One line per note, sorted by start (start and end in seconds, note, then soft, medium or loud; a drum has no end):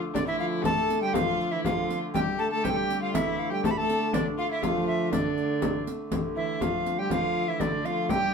0.00 2.14 D3 medium
0.00 2.15 A3 medium
0.14 0.26 D3 medium
0.14 0.20 D4 medium
0.14 0.26 D5 loud
0.14 riq medium
0.14 frame drum medium
0.26 0.41 E3 medium
0.26 0.64 E4 medium
0.26 0.38 E5 medium
0.39 0.65 F3 medium
0.39 0.46 F5 medium
0.62 1.03 A3 medium
0.62 1.06 A4 medium
0.62 1.00 A5 loud
0.62 riq medium
0.62 frame drum medium
0.90 riq soft
1.02 1.14 G3 medium
1.02 1.15 G5 medium
1.07 1.15 G4 medium
1.14 1.54 F3 medium
1.14 1.54 F4 medium
1.14 1.53 F5 loud
1.14 riq medium
1.14 frame drum loud
1.39 riq soft
1.39 frame drum soft
1.51 1.67 E3 medium
1.51 1.67 E4 medium
1.51 1.64 E5 medium
1.64 2.02 F3 medium
1.64 2.02 F4 medium
1.64 1.99 F5 medium
1.64 riq medium
1.64 frame drum medium
1.90 riq soft
1.90 frame drum soft
2.14 6.12 D3 medium
2.14 2.38 G3 medium
2.14 6.11 A3 medium
2.14 2.40 G4 medium
2.14 2.20 G5 loud
2.14 riq medium
2.14 frame drum medium
2.38 2.51 A3 medium
2.38 2.51 A4 medium
2.38 2.50 A5 medium
2.51 2.66 A3 medium
2.51 2.65 A4 medium
2.51 2.66 A5 medium
2.64 3.17 G3 medium
2.64 2.71 G4 medium
2.64 3.01 G5 loud
2.64 riq medium
2.64 frame drum medium
2.69 2.78 A4 medium
2.76 3.01 G4 medium
2.90 riq soft
3.02 3.16 F4 medium
3.02 3.13 F5 medium
3.13 3.54 E3 medium
3.13 3.52 E4 medium
3.13 3.41 E5 medium
3.13 riq medium
3.13 frame drum medium
3.39 3.51 F5 medium
3.50 3.67 G3 medium
3.50 3.63 G4 medium
3.50 3.64 G5 medium
3.63 3.77 A3 medium
3.63 3.76 A4 medium
3.63 3.72 A5 loud
3.63 riq medium
3.63 frame drum medium
3.71 3.79 B5 medium
3.76 4.16 A3 medium
3.76 4.11 A4 medium
3.76 4.15 A5 medium
3.90 riq soft
4.13 4.26 D3 medium
4.13 4.25 D4 medium
4.13 4.26 D5 loud
4.13 riq medium
4.13 frame drum medium
4.38 4.50 F4 medium
4.38 4.50 F5 medium
4.51 4.64 E4 medium
4.51 4.65 E5 medium
4.62 5.15 F3 loud
4.62 5.14 F4 medium
4.62 4.87 F5 medium
4.62 riq medium
4.62 frame drum medium
4.87 5.11 E5 medium
5.12 5.87 D3 medium
5.12 5.87 D4 medium
5.12 5.83 D5 medium
5.12 riq medium
5.12 frame drum medium
5.38 riq soft
5.62 riq medium
5.62 frame drum medium
5.86 riq soft
5.86 frame drum soft
6.11 8.34 D3 medium
6.11 8.34 A3 medium
6.11 riq medium
6.11 frame drum medium
6.36 6.63 E3 medium
6.36 6.62 E4 medium
6.36 6.63 E5 medium
6.60 7.01 F3 medium
6.60 6.98 F4 medium
6.60 7.00 F5 medium
6.60 riq medium
6.60 frame drum medium
6.86 riq soft
6.99 7.13 G3 medium
6.99 7.12 G4 medium
6.99 7.11 G5 medium
7.10 7.49 F3 medium
7.10 7.51 F4 medium
7.10 7.50 F5 loud
7.10 riq medium
7.10 frame drum medium
7.48 7.62 E3 medium
7.48 7.63 E4 medium
7.48 7.62 E5 medium
7.60 7.83 D3 medium
7.60 7.69 D4 medium
7.60 7.87 D5 medium
7.60 riq medium
7.60 frame drum medium
7.67 7.74 E4 medium
7.73 7.86 D4 medium
7.84 8.11 F3 medium
7.84 8.10 F4 medium
7.84 8.11 F5 medium
7.84 riq soft
8.09 8.34 G3 medium
8.09 8.34 G4 medium
8.09 8.34 G5 loud
8.09 riq medium
8.09 frame drum medium